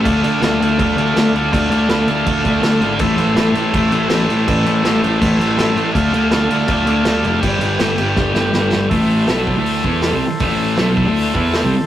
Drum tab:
CC |xxxxxxxx|xxxxxxxx|xxxxxxxx|xxxxxxxx|
HH |--------|--------|--------|--------|
SD |--o---o-|--o---o-|--o---o-|--o---o-|
BD |o---o---|o---oo--|o---o---|o---o---|

CC |xxxxxxxx|xxxx----|--------|--------|
HH |--------|--------|o-o-o-o-|o-o-o-o-|
SD |--o---o-|--o-oooo|--o---o-|--o---o-|
BD |o---o---|o---o---|o--o-o--|o--o-o--|